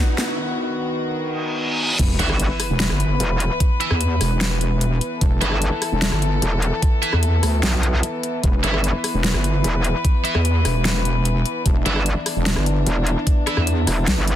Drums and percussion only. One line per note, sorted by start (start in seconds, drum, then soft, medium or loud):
0.18 snare medium
0.18 closed hi-hat medium
1.99 kick loud
1.99 closed hi-hat medium
1.99 crash loud
2.19 closed hi-hat medium
2.30 cross-stick medium
2.40 closed hi-hat medium
2.60 cross-stick medium
2.60 open hi-hat loud
2.80 snare loud
2.80 closed hi-hat medium
2.90 cross-stick medium
3.00 closed hi-hat medium
3.20 closed hi-hat medium
3.40 closed hi-hat medium
3.60 kick loud
3.60 closed hi-hat medium
3.81 closed hi-hat medium
3.91 cross-stick medium
4.01 closed hi-hat medium
4.21 cross-stick medium
4.21 open hi-hat loud
4.41 snare loud
4.41 closed hi-hat medium
4.61 closed hi-hat medium
4.81 closed hi-hat medium
5.01 closed hi-hat medium
5.21 kick loud
5.21 closed hi-hat medium
5.42 closed hi-hat medium
5.52 cross-stick medium
5.62 closed hi-hat medium
5.82 cross-stick medium
5.82 open hi-hat medium
6.02 snare loud
6.02 closed hi-hat medium
6.12 cross-stick medium
6.22 closed hi-hat medium
6.42 closed hi-hat medium
6.62 closed hi-hat medium
6.82 kick loud
6.82 closed hi-hat medium
7.03 closed hi-hat medium
7.13 cross-stick medium
7.23 closed hi-hat medium
7.43 cross-stick medium
7.43 open hi-hat medium
7.63 snare loud
7.63 closed hi-hat medium
7.83 closed hi-hat medium
8.03 closed hi-hat medium
8.23 closed hi-hat medium
8.44 kick loud
8.44 closed hi-hat medium
8.64 closed hi-hat medium
8.74 cross-stick medium
8.84 closed hi-hat medium
9.04 cross-stick medium
9.04 open hi-hat medium
9.24 snare loud
9.24 closed hi-hat medium
9.34 cross-stick medium
9.44 closed hi-hat medium
9.64 closed hi-hat medium
9.84 closed hi-hat medium
10.05 kick loud
10.05 closed hi-hat medium
10.25 closed hi-hat medium
10.35 cross-stick medium
10.45 closed hi-hat medium
10.65 cross-stick medium
10.65 open hi-hat medium
10.85 snare loud
10.85 closed hi-hat medium
11.05 closed hi-hat medium
11.25 closed hi-hat medium
11.46 closed hi-hat medium
11.66 kick loud
11.66 closed hi-hat medium
11.86 closed hi-hat medium
11.96 cross-stick medium
12.06 closed hi-hat medium
12.26 cross-stick medium
12.26 open hi-hat loud
12.46 snare loud
12.46 closed hi-hat medium
12.56 cross-stick medium
12.66 closed hi-hat medium
12.87 closed hi-hat medium
13.07 closed hi-hat medium
13.27 kick loud
13.27 closed hi-hat medium
13.47 cross-stick medium
13.47 closed hi-hat medium
13.57 cross-stick medium
13.67 closed hi-hat medium
13.87 cross-stick medium
13.87 open hi-hat loud
14.07 snare loud
14.07 closed hi-hat medium
14.28 closed hi-hat medium